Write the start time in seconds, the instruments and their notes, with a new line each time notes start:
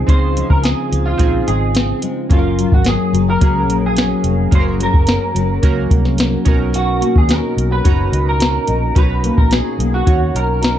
Already playing: nylon-string guitar F3 G#3, synth keys C4 D#4 F4 G#4
0.06 fingered electric bass C#2, nylon-string guitar C#3 C4, synth keys C4 D#4 F4 G#4, clean electric guitar C5, kick, closed hi-hat
0.36 nylon-string guitar F3, closed hi-hat
0.50 fingered electric bass C#2, clean electric guitar A#4, kick
0.63 nylon-string guitar C4, clean electric guitar G#4, snare, closed hi-hat
0.91 fingered electric bass C#2, nylon-string guitar F3, closed hi-hat
1.06 clean electric guitar F4
1.17 fingered electric bass A#1, synth keys C4 D#4 F4 G#4, nylon-string guitar C4, kick, closed hi-hat
1.47 fingered electric bass G#1, nylon-string guitar G#3, clean electric guitar G#4, closed hi-hat
1.75 nylon-string guitar C4, snare, closed hi-hat
2.02 nylon-string guitar G#3, closed hi-hat
2.29 fingered electric bass F#1, nylon-string guitar F#2 C#4, synth keys F#3 A#3 C#4 A4, clean electric guitar F4, kick, closed hi-hat
2.38 synth keys A#4
2.59 nylon-string guitar F#3, closed hi-hat
2.72 fingered electric bass G#1, clean electric guitar F#4, kick
2.85 nylon-string guitar C#4, clean electric guitar G#4, snare, closed hi-hat
3.13 fingered electric bass F#1, nylon-string guitar F#3, closed hi-hat
3.30 clean electric guitar A#4
3.41 fingered electric bass C#2, synth keys A#3 C#4 F#4 G#4, nylon-string guitar C#4, kick, closed hi-hat
3.68 fingered electric bass A#1, nylon-string guitar A#3, closed hi-hat
3.86 clean electric guitar G#4
3.97 nylon-string guitar C#4, snare, closed hi-hat
4.24 fingered electric bass F1, nylon-string guitar A#3, closed hi-hat
4.51 fingered electric bass F#1, nylon-string guitar F#2 C#4, synth keys A#3 C#4 F#4 G#4, kick, closed hi-hat
4.55 clean electric guitar C5
4.60 synth keys A#4
4.80 nylon-string guitar F#3, clean electric guitar A#4, closed hi-hat
4.94 fingered electric bass F#1, kick
5.07 nylon-string guitar C#4, snare, closed hi-hat
5.35 fingered electric bass F#1, nylon-string guitar F#3, closed hi-hat
5.62 fingered electric bass C#2, synth keys A#3 C#4 F#4 A#4, nylon-string guitar C#4, kick, closed hi-hat
5.90 fingered electric bass C2, nylon-string guitar A#3, kick, closed hi-hat
6.05 snare
6.18 nylon-string guitar C#4, snare, closed hi-hat
6.45 fingered electric bass B1, nylon-string guitar B2, synth keys C#4 D#4 F#4 A#4, kick, closed hi-hat
6.73 nylon-string guitar B2 F#4, clean electric guitar F#4, closed hi-hat
7.01 nylon-string guitar A#3, closed hi-hat
7.16 fingered electric bass D#2, clean electric guitar G#4, kick
7.28 nylon-string guitar F#4, clean electric guitar A#4, snare, closed hi-hat
7.57 fingered electric bass B1, closed hi-hat
7.72 clean electric guitar B4
7.84 fingered electric bass F#1, synth keys C#4 D#4 F#4 A#5, nylon-string guitar F#4, kick, closed hi-hat
8.12 fingered electric bass C#2, nylon-string guitar D#4, closed hi-hat
8.29 clean electric guitar A#4
8.40 nylon-string guitar F#4, snare, closed hi-hat
8.67 fingered electric bass A#1, nylon-string guitar D#4, closed hi-hat
8.95 fingered electric bass B1, nylon-string guitar B2 F#4, synth keys C#4 D#4 F#4 A#5, clean electric guitar B4, kick, closed hi-hat
9.24 nylon-string guitar A#3, closed hi-hat
9.38 fingered electric bass A#1, clean electric guitar A#4, kick
9.51 nylon-string guitar F#4, clean electric guitar G#4, snare, closed hi-hat
9.79 fingered electric bass B1, nylon-string guitar A#3, closed hi-hat
9.94 clean electric guitar F#4
10.07 fingered electric bass D#2, synth keys C#4 D#4 F#4 C#5, nylon-string guitar F#4, kick, closed hi-hat
10.35 fingered electric bass B1, nylon-string guitar D#4, clean electric guitar A#4, closed hi-hat
10.62 nylon-string guitar F#4, snare, closed hi-hat